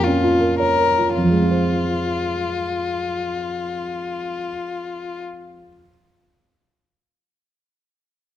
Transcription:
Already playing: grand piano F2 F3 A#3
0.04 grand piano C#4, violin F4
0.24 grand piano F4
0.40 grand piano A#4
0.59 violin A#4, grand piano C#5
0.78 grand piano A#4
0.98 grand piano F4
1.14 grand piano F2, violin F4
1.23 grand piano F3
1.30 grand piano G#3
1.37 grand piano C4
1.44 grand piano F4
1.51 grand piano C5

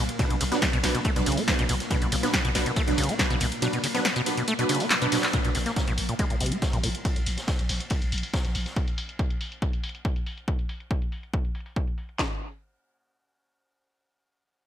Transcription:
Already playing: ambient pad A#2 A#3
0.09 closed hi-hat
0.19 acid bass B2, synth stab F#3 D4 B4, kick, closed hi-hat, ride
0.30 808-style bass B1, acid bass B2, closed hi-hat
0.40 808-style bass B1, acid bass C#3, open hi-hat, ride
0.52 synth stab F#3 D4 B4, acid bass B3, snare, closed hi-hat
0.62 kick, snare, closed hi-hat, ride
0.73 808-style bass B1, acid bass B2, closed hi-hat, ride
0.83 808-style bass B1, synth stab F#3 D4 B4, snare, open hi-hat, ride
0.95 acid bass B2, closed hi-hat, ride
1.04 acid bass A3, kick, closed hi-hat, ride
1.16 808-style bass B1, acid bass B2, synth stab F#3 D4 B4, closed hi-hat, ride
1.26 808-style bass B1, acid bass C#3, open hi-hat, ride
1.32 closed hi-hat
1.37 acid bass B3, open hi-hat
1.48 synth stab F#3 D4 B4, kick, snare, closed hi-hat, ride
1.59 808-style bass B1, acid bass B2, closed hi-hat
1.69 808-style bass B1, acid bass B2, open hi-hat, ride
1.80 snare, closed hi-hat
1.90 acid bass B2, synth stab F#3 D4 B4, kick, closed hi-hat, ride
2.02 808-style bass B1, acid bass B2, closed hi-hat
2.12 808-style bass B1, acid bass C#3, snare, open hi-hat, ride
2.23 synth stab F#3 D4 B4, acid bass B3, snare, closed hi-hat
2.33 kick, snare, closed hi-hat, ride
2.45 808-style bass B1, acid bass B2, closed hi-hat
2.55 808-style bass B1, synth stab F#3 D4 B4, snare, open hi-hat, ride
2.66 acid bass B2, closed hi-hat, ride
2.76 acid bass A3, kick, closed hi-hat, ride
2.87 808-style bass B1, acid bass B2, synth stab F#3 D4 B4, closed hi-hat
2.98 808-style bass B1, acid bass C#3, open hi-hat, ride
3.04 closed hi-hat
3.09 acid bass B3, closed hi-hat
3.18 synth stab F#3 D4 B4, kick, snare, closed hi-hat, ride
3.30 808-style bass B1, acid bass B2, closed hi-hat
3.40 808-style bass B1, acid bass B2, open hi-hat, ride
3.52 closed hi-hat
3.62 acid bass B2, synth stab F#3 D4 B4, closed hi-hat, ride
3.73 acid bass B2, closed hi-hat
3.83 acid bass C#3, open hi-hat, ride
3.94 synth stab F#3 D4 B4, acid bass B3, snare, closed hi-hat
4.05 snare, closed hi-hat, ride
4.16 acid bass B2, closed hi-hat, ride
4.26 synth stab F#3 D4 B4, open hi-hat, ride
4.37 acid bass B2, closed hi-hat, ride
4.48 acid bass A3, closed hi-hat
4.59 acid bass B2, synth stab F#3 D4 B4, closed hi-hat
4.69 acid bass C#3, synth stab F#3 D4 B4, open hi-hat, ride
4.75 closed hi-hat
4.80 acid bass B3, open hi-hat
4.91 snare, clap, closed hi-hat, ride
5.02 acid bass B2, synth stab F#3 D4 B4, closed hi-hat
5.12 acid bass B2, synth stab F#3 D4 B4, snare, open hi-hat, ride
5.18 snare, ride
5.23 snare, clap, closed hi-hat, ride
5.28 snare, ride
5.33 acid bass A#2, kick, closed hi-hat, ride
5.45 808-style bass A#1, acid bass A#2, closed hi-hat
5.54 808-style bass A#1, acid bass C3, snare, open hi-hat, ride
5.66 acid bass A#3, snare, closed hi-hat
5.76 kick, snare, closed hi-hat, ride
5.87 808-style bass A#1, acid bass A#2, closed hi-hat
5.97 808-style bass A#1, open hi-hat, ride
6.09 acid bass A#2, closed hi-hat, ride
6.19 acid bass G#3, kick, closed hi-hat, ride
6.30 808-style bass A#1, acid bass A#2, closed hi-hat
6.40 808-style bass A#1, acid bass C3, open hi-hat, ride
6.46 closed hi-hat
6.52 acid bass A#3, closed hi-hat
6.62 kick, snare, closed hi-hat, ride
6.73 808-style bass A#1, acid bass A#2, closed hi-hat
6.83 808-style bass A#1, acid bass A#2, open hi-hat, ride
6.95 closed hi-hat
7.05 kick, closed hi-hat, ride
7.16 808-style bass A#1, closed hi-hat
7.26 808-style bass A#1, open hi-hat, ride
7.37 snare, closed hi-hat
7.47 kick, snare, closed hi-hat, ride
7.59 808-style bass A#1, closed hi-hat, ride
7.69 808-style bass A#1, snare, open hi-hat, ride
7.80 closed hi-hat, ride
7.90 kick, closed hi-hat, ride
8.02 808-style bass A#1, closed hi-hat, ride
8.12 808-style bass A#1, open hi-hat, ride
8.18 closed hi-hat
8.23 open hi-hat
8.33 kick, snare, closed hi-hat, ride
8.45 808-style bass A#1, closed hi-hat
8.55 808-style bass A#1, open hi-hat, ride
8.66 snare, closed hi-hat
8.76 kick, closed hi-hat
8.88 closed hi-hat
8.98 open hi-hat
9.09 closed hi-hat
9.19 kick, closed hi-hat
9.30 closed hi-hat
9.41 open hi-hat
9.52 closed hi-hat
9.62 kick, closed hi-hat
9.73 closed hi-hat
9.84 open hi-hat
9.89 closed hi-hat
9.95 closed hi-hat
10.05 kick, closed hi-hat
10.16 closed hi-hat
10.26 open hi-hat
10.37 closed hi-hat
10.48 kick, closed hi-hat
10.59 closed hi-hat
10.69 open hi-hat
10.80 closed hi-hat
10.91 kick, closed hi-hat
11.02 closed hi-hat
11.12 open hi-hat
11.23 closed hi-hat
11.34 kick, closed hi-hat
11.45 closed hi-hat
11.55 open hi-hat
11.60 closed hi-hat
11.66 open hi-hat
11.76 kick, closed hi-hat
11.87 closed hi-hat
11.98 open hi-hat
12.09 closed hi-hat
12.19 kick, snare, clap

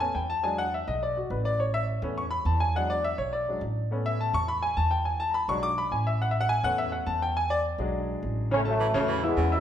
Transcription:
Already playing: upright bass E2
0.00 grand piano A3 B3 C#4 G#5
0.15 upright bass E2, grand piano G5
0.30 grand piano A5
0.43 grand piano F#3 G#3 D4 G#5
0.58 grand piano F#5
0.74 grand piano E5
0.87 upright bass B1, grand piano D#5
1.03 grand piano D5
1.17 grand piano F#4
1.30 upright bass A1, grand piano B4
1.45 grand piano D5
1.60 grand piano C#5
1.74 grand piano E5
2.02 upright bass E2, grand piano A3 B3 C#4
2.18 grand piano C#6
2.31 grand piano B5
2.45 upright bass E2, grand piano A5
2.60 grand piano G#5
2.75 grand piano F#3 G#3 D4 F#5
2.90 grand piano D5
3.04 grand piano E5
3.18 upright bass B1, grand piano C#5
3.33 grand piano D5
3.48 grand piano F#3 G#3 D4
3.61 upright bass A1
3.91 grand piano A3 B3 C#4
4.06 grand piano E5
4.21 grand piano A5
4.33 upright bass E2, grand piano C#6
4.48 grand piano B5
4.63 grand piano G#5
4.77 upright bass E2, grand piano A5
4.91 grand piano G5
5.05 grand piano G#5
5.20 grand piano A5
5.30 grand piano A#5 B5
5.48 upright bass B1, grand piano F#3 G#3 D4 C#6
5.63 grand piano D6
5.78 grand piano B5
5.91 upright bass A1, grand piano G#5
6.07 grand piano E5
6.22 grand piano F#5
6.31 grand piano E5
6.41 grand piano F#5
6.49 grand piano G#5
6.63 upright bass E2, grand piano A3 B3 C#4 F#5
6.78 grand piano E5
6.92 grand piano F#5
7.07 upright bass E2, grand piano A5
7.22 grand piano G5
7.37 grand piano G#5
7.50 grand piano D5
7.78 upright bass B1, grand piano F#3 G#3 D4
8.23 upright bass A1
8.51 grand piano C#3 C#4 C#5, trombone section A3 C#4
8.65 trombone section F#3 A3, grand piano A3 A4 A5
8.80 baritone saxophone E3
8.94 upright bass E2, grand piano C#3 C#4 C#5, baritone saxophone C#3, trombone section F#3 A3
9.08 baritone saxophone E3
9.23 grand piano E3 E4 E5, trombone section G#3 B3
9.37 upright bass E2, baritone saxophone C#3
9.52 trombone section D3 F#3, grand piano E4 E5 E6

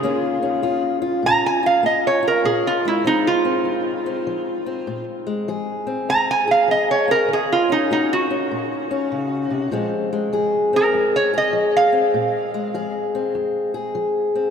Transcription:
Already playing: resonator guitar played with a steel bar G#4
0.03 steel-string acoustic guitar D#3 A#3 C#4 F4
0.42 steel-string acoustic guitar C#4
0.62 steel-string acoustic guitar A#3 F4
1.02 steel-string acoustic guitar F4
1.23 steel-string acoustic guitar A#2, resonator guitar played with a steel bar A#5
1.46 resonator guitar played with a steel bar G#5
1.63 steel-string acoustic guitar F4, resonator guitar played with a steel bar F5
1.83 steel-string acoustic guitar A#3, resonator guitar played with a steel bar D#5
2.07 resonator guitar played with a steel bar C#5
2.23 steel-string acoustic guitar F4
2.28 resonator guitar played with a steel bar A#4
2.44 steel-string acoustic guitar A#2, resonator guitar played with a steel bar G#4
2.67 resonator guitar played with a steel bar F4
2.85 steel-string acoustic guitar G#3, resonator guitar played with a steel bar E4
3.04 steel-string acoustic guitar F3 C4, resonator guitar played with a steel bar D#4
3.27 resonator guitar played with a steel bar F4
3.45 steel-string acoustic guitar C4
3.65 steel-string acoustic guitar F2
4.06 steel-string acoustic guitar C4
4.27 steel-string acoustic guitar F3
4.66 steel-string acoustic guitar C4
4.87 steel-string acoustic guitar A#2
5.27 steel-string acoustic guitar G#3
5.48 steel-string acoustic guitar F3 G#4
5.87 steel-string acoustic guitar C4
6.09 steel-string acoustic guitar F2, resonator guitar played with a steel bar A#5
6.31 resonator guitar played with a steel bar G#5
6.48 steel-string acoustic guitar G#4, resonator guitar played with a steel bar F5
6.68 steel-string acoustic guitar F3, resonator guitar played with a steel bar D#5
6.91 resonator guitar played with a steel bar C#5
7.08 steel-string acoustic guitar C4, resonator guitar played with a steel bar A#4
7.28 steel-string acoustic guitar D#3
7.33 resonator guitar played with a steel bar G#4
7.52 resonator guitar played with a steel bar F4
7.69 steel-string acoustic guitar C#4, resonator guitar played with a steel bar D#4
7.90 steel-string acoustic guitar A#3 F#4, resonator guitar played with a steel bar D#4
8.13 resonator guitar played with a steel bar F#4
8.30 steel-string acoustic guitar C#4
8.51 steel-string acoustic guitar A#2
8.91 steel-string acoustic guitar C#4
9.12 steel-string acoustic guitar C#3
9.50 steel-string acoustic guitar C3
9.71 steel-string acoustic guitar A#2 F3 G#3 C4
10.13 steel-string acoustic guitar G#3
10.33 steel-string acoustic guitar F3 G#4
10.73 steel-string acoustic guitar C4, resonator guitar played with a steel bar A#4
10.94 steel-string acoustic guitar F2
11.16 resonator guitar played with a steel bar C#5
11.33 steel-string acoustic guitar G#4
11.38 resonator guitar played with a steel bar D#5
11.53 steel-string acoustic guitar F3
11.77 resonator guitar played with a steel bar F5
11.92 steel-string acoustic guitar C4
12.14 steel-string acoustic guitar A#2
12.54 steel-string acoustic guitar G#3
12.74 steel-string acoustic guitar F3 G#4
13.15 steel-string acoustic guitar C4
13.35 steel-string acoustic guitar F2
13.74 steel-string acoustic guitar G#4
13.95 steel-string acoustic guitar F3
14.35 steel-string acoustic guitar C4

